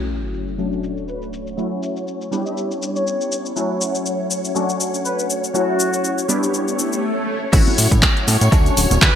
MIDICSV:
0, 0, Header, 1, 8, 480
1, 0, Start_track
1, 0, Tempo, 495868
1, 1529, Time_signature, 4, 2, 24, 8
1, 8861, End_track
2, 0, Start_track
2, 0, Title_t, "String machine"
2, 0, Program_c, 0, 50
2, 0, Note_on_c, 0, 73, 80
2, 7278, Note_off_c, 0, 73, 0
2, 7289, Note_on_c, 0, 73, 87
2, 8861, Note_off_c, 0, 73, 0
2, 8861, End_track
3, 0, Start_track
3, 0, Title_t, "Trumpet section"
3, 0, Program_c, 1, 61
3, 1047, Note_on_c, 1, 71, 81
3, 1234, Note_off_c, 1, 71, 0
3, 2381, Note_on_c, 1, 76, 80
3, 2555, Note_off_c, 1, 76, 0
3, 2864, Note_on_c, 1, 73, 87
3, 3344, Note_off_c, 1, 73, 0
3, 4889, Note_on_c, 1, 71, 87
3, 5076, Note_off_c, 1, 71, 0
3, 5369, Note_on_c, 1, 66, 90
3, 6046, Note_off_c, 1, 66, 0
3, 8726, Note_on_c, 1, 71, 95
3, 8861, Note_off_c, 1, 71, 0
3, 8861, End_track
4, 0, Start_track
4, 0, Title_t, "Analog polysynth"
4, 0, Program_c, 2, 90
4, 0, Note_on_c, 2, 54, 77
4, 0, Note_on_c, 2, 57, 72
4, 0, Note_on_c, 2, 61, 70
4, 0, Note_on_c, 2, 64, 70
4, 0, Note_on_c, 2, 66, 84
4, 522, Note_off_c, 2, 54, 0
4, 524, Note_off_c, 2, 57, 0
4, 526, Note_off_c, 2, 61, 0
4, 527, Note_off_c, 2, 64, 0
4, 529, Note_off_c, 2, 66, 0
4, 561, Note_on_c, 2, 54, 74
4, 566, Note_on_c, 2, 57, 67
4, 569, Note_on_c, 2, 61, 67
4, 573, Note_on_c, 2, 62, 68
4, 576, Note_on_c, 2, 66, 82
4, 1483, Note_off_c, 2, 54, 0
4, 1485, Note_off_c, 2, 57, 0
4, 1487, Note_off_c, 2, 61, 0
4, 1488, Note_off_c, 2, 62, 0
4, 1490, Note_off_c, 2, 66, 0
4, 1521, Note_on_c, 2, 54, 78
4, 1525, Note_on_c, 2, 57, 72
4, 1529, Note_on_c, 2, 61, 71
4, 1533, Note_on_c, 2, 64, 71
4, 1536, Note_on_c, 2, 66, 86
4, 2202, Note_off_c, 2, 54, 0
4, 2204, Note_off_c, 2, 57, 0
4, 2207, Note_off_c, 2, 61, 0
4, 2209, Note_off_c, 2, 64, 0
4, 2210, Note_off_c, 2, 66, 0
4, 2237, Note_on_c, 2, 55, 87
4, 2242, Note_on_c, 2, 59, 80
4, 2245, Note_on_c, 2, 62, 80
4, 2248, Note_on_c, 2, 64, 78
4, 2251, Note_on_c, 2, 67, 95
4, 3400, Note_off_c, 2, 55, 0
4, 3403, Note_off_c, 2, 59, 0
4, 3404, Note_off_c, 2, 62, 0
4, 3406, Note_off_c, 2, 64, 0
4, 3408, Note_off_c, 2, 67, 0
4, 3444, Note_on_c, 2, 54, 77
4, 3447, Note_on_c, 2, 57, 71
4, 3450, Note_on_c, 2, 61, 72
4, 3455, Note_on_c, 2, 64, 70
4, 3458, Note_on_c, 2, 66, 83
4, 4364, Note_off_c, 2, 54, 0
4, 4365, Note_off_c, 2, 57, 0
4, 4367, Note_off_c, 2, 61, 0
4, 4370, Note_off_c, 2, 64, 0
4, 4371, Note_off_c, 2, 66, 0
4, 4401, Note_on_c, 2, 54, 75
4, 4406, Note_on_c, 2, 57, 71
4, 4410, Note_on_c, 2, 61, 70
4, 4413, Note_on_c, 2, 62, 68
4, 4417, Note_on_c, 2, 66, 85
4, 5323, Note_off_c, 2, 54, 0
4, 5325, Note_off_c, 2, 57, 0
4, 5327, Note_off_c, 2, 61, 0
4, 5328, Note_off_c, 2, 62, 0
4, 5330, Note_off_c, 2, 66, 0
4, 5359, Note_on_c, 2, 54, 79
4, 5364, Note_on_c, 2, 57, 71
4, 5368, Note_on_c, 2, 61, 72
4, 5371, Note_on_c, 2, 64, 72
4, 5377, Note_on_c, 2, 66, 87
4, 6042, Note_off_c, 2, 54, 0
4, 6044, Note_off_c, 2, 57, 0
4, 6046, Note_off_c, 2, 61, 0
4, 6048, Note_off_c, 2, 64, 0
4, 6050, Note_off_c, 2, 66, 0
4, 6082, Note_on_c, 2, 55, 86
4, 6086, Note_on_c, 2, 59, 80
4, 6089, Note_on_c, 2, 62, 82
4, 6094, Note_on_c, 2, 64, 81
4, 6098, Note_on_c, 2, 67, 96
4, 6806, Note_off_c, 2, 55, 0
4, 6808, Note_off_c, 2, 59, 0
4, 6810, Note_off_c, 2, 62, 0
4, 6812, Note_off_c, 2, 64, 0
4, 6814, Note_off_c, 2, 67, 0
4, 7280, Note_on_c, 2, 54, 83
4, 7283, Note_on_c, 2, 57, 76
4, 7288, Note_on_c, 2, 61, 76
4, 7292, Note_on_c, 2, 64, 77
4, 7295, Note_on_c, 2, 66, 90
4, 8202, Note_off_c, 2, 54, 0
4, 8204, Note_off_c, 2, 57, 0
4, 8206, Note_off_c, 2, 61, 0
4, 8208, Note_off_c, 2, 64, 0
4, 8210, Note_off_c, 2, 66, 0
4, 8239, Note_on_c, 2, 54, 81
4, 8244, Note_on_c, 2, 57, 74
4, 8248, Note_on_c, 2, 61, 75
4, 8252, Note_on_c, 2, 62, 75
4, 8254, Note_on_c, 2, 66, 89
4, 8861, Note_off_c, 2, 54, 0
4, 8861, Note_off_c, 2, 57, 0
4, 8861, Note_off_c, 2, 61, 0
4, 8861, Note_off_c, 2, 62, 0
4, 8861, Note_off_c, 2, 66, 0
4, 8861, End_track
5, 0, Start_track
5, 0, Title_t, "Analog synth bass"
5, 0, Program_c, 3, 38
5, 7289, Note_on_c, 3, 33, 99
5, 7383, Note_off_c, 3, 33, 0
5, 7533, Note_on_c, 3, 45, 82
5, 7625, Note_off_c, 3, 45, 0
5, 7662, Note_on_c, 3, 45, 97
5, 7769, Note_on_c, 3, 33, 81
5, 7783, Note_off_c, 3, 45, 0
5, 7863, Note_off_c, 3, 33, 0
5, 8012, Note_on_c, 3, 45, 101
5, 8104, Note_off_c, 3, 45, 0
5, 8144, Note_on_c, 3, 45, 102
5, 8219, Note_off_c, 3, 45, 0
5, 8249, Note_on_c, 3, 38, 86
5, 8426, Note_off_c, 3, 38, 0
5, 8492, Note_on_c, 3, 26, 91
5, 8584, Note_off_c, 3, 26, 0
5, 8622, Note_on_c, 3, 26, 108
5, 8698, Note_off_c, 3, 26, 0
5, 8730, Note_on_c, 3, 38, 100
5, 8824, Note_off_c, 3, 38, 0
5, 8861, End_track
6, 0, Start_track
6, 0, Title_t, "Sub drop"
6, 0, Program_c, 4, 103
6, 0, Note_on_c, 4, 60, 65
6, 1529, Note_off_c, 4, 60, 0
6, 8861, End_track
7, 0, Start_track
7, 0, Title_t, "Swell"
7, 0, Program_c, 5, 103
7, 6330, Note_on_c, 5, 60, 71
7, 7290, Note_off_c, 5, 60, 0
7, 8861, End_track
8, 0, Start_track
8, 0, Title_t, "Drums"
8, 89, Note_on_c, 9, 69, 39
8, 186, Note_off_c, 9, 69, 0
8, 329, Note_on_c, 9, 69, 68
8, 426, Note_off_c, 9, 69, 0
8, 461, Note_on_c, 9, 69, 30
8, 558, Note_off_c, 9, 69, 0
8, 568, Note_on_c, 9, 69, 38
8, 665, Note_off_c, 9, 69, 0
8, 703, Note_on_c, 9, 69, 27
8, 799, Note_off_c, 9, 69, 0
8, 808, Note_on_c, 9, 69, 67
8, 904, Note_off_c, 9, 69, 0
8, 941, Note_on_c, 9, 69, 29
8, 1037, Note_off_c, 9, 69, 0
8, 1047, Note_on_c, 9, 69, 39
8, 1144, Note_off_c, 9, 69, 0
8, 1181, Note_on_c, 9, 69, 28
8, 1278, Note_off_c, 9, 69, 0
8, 1289, Note_on_c, 9, 69, 67
8, 1385, Note_off_c, 9, 69, 0
8, 1423, Note_on_c, 9, 69, 30
8, 1520, Note_off_c, 9, 69, 0
8, 1531, Note_on_c, 9, 69, 38
8, 1628, Note_off_c, 9, 69, 0
8, 1770, Note_on_c, 9, 69, 66
8, 1866, Note_off_c, 9, 69, 0
8, 1902, Note_on_c, 9, 69, 29
8, 1999, Note_off_c, 9, 69, 0
8, 2010, Note_on_c, 9, 69, 38
8, 2107, Note_off_c, 9, 69, 0
8, 2143, Note_on_c, 9, 69, 26
8, 2240, Note_off_c, 9, 69, 0
8, 2250, Note_on_c, 9, 69, 66
8, 2347, Note_off_c, 9, 69, 0
8, 2384, Note_on_c, 9, 69, 29
8, 2480, Note_off_c, 9, 69, 0
8, 2491, Note_on_c, 9, 69, 37
8, 2587, Note_off_c, 9, 69, 0
8, 2626, Note_on_c, 9, 69, 26
8, 2723, Note_off_c, 9, 69, 0
8, 2733, Note_on_c, 9, 69, 67
8, 2829, Note_off_c, 9, 69, 0
8, 2866, Note_on_c, 9, 69, 29
8, 2963, Note_off_c, 9, 69, 0
8, 2973, Note_on_c, 9, 69, 39
8, 3070, Note_off_c, 9, 69, 0
8, 3107, Note_on_c, 9, 69, 27
8, 3204, Note_off_c, 9, 69, 0
8, 3213, Note_on_c, 9, 69, 69
8, 3309, Note_off_c, 9, 69, 0
8, 3345, Note_on_c, 9, 69, 29
8, 3442, Note_off_c, 9, 69, 0
8, 3451, Note_on_c, 9, 69, 38
8, 3548, Note_off_c, 9, 69, 0
8, 3690, Note_on_c, 9, 69, 67
8, 3786, Note_off_c, 9, 69, 0
8, 3822, Note_on_c, 9, 69, 30
8, 3919, Note_off_c, 9, 69, 0
8, 3930, Note_on_c, 9, 69, 39
8, 4026, Note_off_c, 9, 69, 0
8, 4170, Note_on_c, 9, 69, 65
8, 4267, Note_off_c, 9, 69, 0
8, 4304, Note_on_c, 9, 69, 30
8, 4400, Note_off_c, 9, 69, 0
8, 4411, Note_on_c, 9, 69, 37
8, 4508, Note_off_c, 9, 69, 0
8, 4543, Note_on_c, 9, 69, 26
8, 4640, Note_off_c, 9, 69, 0
8, 4650, Note_on_c, 9, 69, 68
8, 4747, Note_off_c, 9, 69, 0
8, 4784, Note_on_c, 9, 69, 29
8, 4881, Note_off_c, 9, 69, 0
8, 4892, Note_on_c, 9, 69, 38
8, 4989, Note_off_c, 9, 69, 0
8, 5025, Note_on_c, 9, 69, 27
8, 5121, Note_off_c, 9, 69, 0
8, 5131, Note_on_c, 9, 69, 69
8, 5228, Note_off_c, 9, 69, 0
8, 5265, Note_on_c, 9, 69, 29
8, 5362, Note_off_c, 9, 69, 0
8, 5372, Note_on_c, 9, 69, 39
8, 5468, Note_off_c, 9, 69, 0
8, 5611, Note_on_c, 9, 69, 69
8, 5708, Note_off_c, 9, 69, 0
8, 5744, Note_on_c, 9, 69, 30
8, 5841, Note_off_c, 9, 69, 0
8, 5851, Note_on_c, 9, 69, 39
8, 5948, Note_off_c, 9, 69, 0
8, 5984, Note_on_c, 9, 69, 28
8, 6081, Note_off_c, 9, 69, 0
8, 6092, Note_on_c, 9, 69, 67
8, 6188, Note_off_c, 9, 69, 0
8, 6226, Note_on_c, 9, 69, 31
8, 6323, Note_off_c, 9, 69, 0
8, 6331, Note_on_c, 9, 69, 38
8, 6428, Note_off_c, 9, 69, 0
8, 6466, Note_on_c, 9, 69, 27
8, 6563, Note_off_c, 9, 69, 0
8, 6573, Note_on_c, 9, 69, 66
8, 6669, Note_off_c, 9, 69, 0
8, 6705, Note_on_c, 9, 69, 29
8, 6802, Note_off_c, 9, 69, 0
8, 7287, Note_on_c, 9, 54, 57
8, 7289, Note_on_c, 9, 36, 119
8, 7291, Note_on_c, 9, 42, 54
8, 7291, Note_on_c, 9, 49, 105
8, 7292, Note_on_c, 9, 69, 44
8, 7384, Note_off_c, 9, 54, 0
8, 7386, Note_off_c, 9, 36, 0
8, 7388, Note_off_c, 9, 42, 0
8, 7388, Note_off_c, 9, 49, 0
8, 7389, Note_off_c, 9, 69, 0
8, 7425, Note_on_c, 9, 42, 27
8, 7431, Note_on_c, 9, 63, 88
8, 7522, Note_off_c, 9, 42, 0
8, 7528, Note_off_c, 9, 63, 0
8, 7533, Note_on_c, 9, 46, 104
8, 7534, Note_on_c, 9, 69, 80
8, 7538, Note_on_c, 9, 54, 91
8, 7630, Note_off_c, 9, 46, 0
8, 7631, Note_off_c, 9, 69, 0
8, 7635, Note_off_c, 9, 54, 0
8, 7662, Note_on_c, 9, 36, 61
8, 7665, Note_on_c, 9, 42, 57
8, 7667, Note_on_c, 9, 69, 35
8, 7670, Note_on_c, 9, 54, 44
8, 7671, Note_on_c, 9, 64, 89
8, 7759, Note_off_c, 9, 36, 0
8, 7762, Note_off_c, 9, 42, 0
8, 7763, Note_off_c, 9, 69, 0
8, 7766, Note_off_c, 9, 54, 0
8, 7767, Note_off_c, 9, 64, 0
8, 7769, Note_on_c, 9, 36, 120
8, 7769, Note_on_c, 9, 39, 125
8, 7772, Note_on_c, 9, 42, 54
8, 7773, Note_on_c, 9, 69, 44
8, 7775, Note_on_c, 9, 54, 53
8, 7866, Note_off_c, 9, 36, 0
8, 7866, Note_off_c, 9, 39, 0
8, 7869, Note_off_c, 9, 42, 0
8, 7870, Note_off_c, 9, 69, 0
8, 7872, Note_off_c, 9, 54, 0
8, 7907, Note_on_c, 9, 42, 28
8, 8003, Note_off_c, 9, 42, 0
8, 8014, Note_on_c, 9, 46, 104
8, 8014, Note_on_c, 9, 54, 88
8, 8015, Note_on_c, 9, 69, 78
8, 8017, Note_on_c, 9, 63, 61
8, 8110, Note_off_c, 9, 46, 0
8, 8111, Note_off_c, 9, 54, 0
8, 8111, Note_off_c, 9, 69, 0
8, 8114, Note_off_c, 9, 63, 0
8, 8145, Note_on_c, 9, 42, 59
8, 8145, Note_on_c, 9, 54, 44
8, 8146, Note_on_c, 9, 69, 34
8, 8242, Note_off_c, 9, 42, 0
8, 8242, Note_off_c, 9, 54, 0
8, 8243, Note_off_c, 9, 69, 0
8, 8249, Note_on_c, 9, 36, 116
8, 8253, Note_on_c, 9, 42, 54
8, 8254, Note_on_c, 9, 69, 45
8, 8259, Note_on_c, 9, 54, 52
8, 8346, Note_off_c, 9, 36, 0
8, 8350, Note_off_c, 9, 42, 0
8, 8351, Note_off_c, 9, 69, 0
8, 8356, Note_off_c, 9, 54, 0
8, 8385, Note_on_c, 9, 42, 28
8, 8386, Note_on_c, 9, 69, 31
8, 8390, Note_on_c, 9, 54, 36
8, 8482, Note_off_c, 9, 42, 0
8, 8483, Note_off_c, 9, 69, 0
8, 8487, Note_off_c, 9, 54, 0
8, 8490, Note_on_c, 9, 54, 97
8, 8492, Note_on_c, 9, 46, 103
8, 8493, Note_on_c, 9, 69, 77
8, 8587, Note_off_c, 9, 54, 0
8, 8588, Note_off_c, 9, 46, 0
8, 8589, Note_off_c, 9, 69, 0
8, 8622, Note_on_c, 9, 54, 44
8, 8627, Note_on_c, 9, 42, 56
8, 8628, Note_on_c, 9, 69, 34
8, 8631, Note_on_c, 9, 63, 93
8, 8719, Note_off_c, 9, 54, 0
8, 8724, Note_off_c, 9, 42, 0
8, 8725, Note_off_c, 9, 69, 0
8, 8727, Note_off_c, 9, 63, 0
8, 8729, Note_on_c, 9, 54, 51
8, 8730, Note_on_c, 9, 36, 117
8, 8731, Note_on_c, 9, 39, 120
8, 8734, Note_on_c, 9, 42, 55
8, 8735, Note_on_c, 9, 69, 45
8, 8826, Note_off_c, 9, 36, 0
8, 8826, Note_off_c, 9, 54, 0
8, 8828, Note_off_c, 9, 39, 0
8, 8831, Note_off_c, 9, 42, 0
8, 8832, Note_off_c, 9, 69, 0
8, 8861, End_track
0, 0, End_of_file